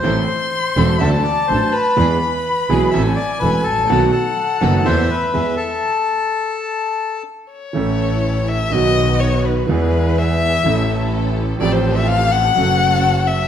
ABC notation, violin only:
X:1
M:4/4
L:1/16
Q:1/4=125
K:Am
V:1 name="Violin"
c'8 a8 | b8 ^g8 | ^f8 e4 e4 | z12 z2 ^c2- |
[K:A] c6 e2 ^d4 c2 B2 | B4 e8 z4 | d =c2 e =f2 ^f8 e2 |]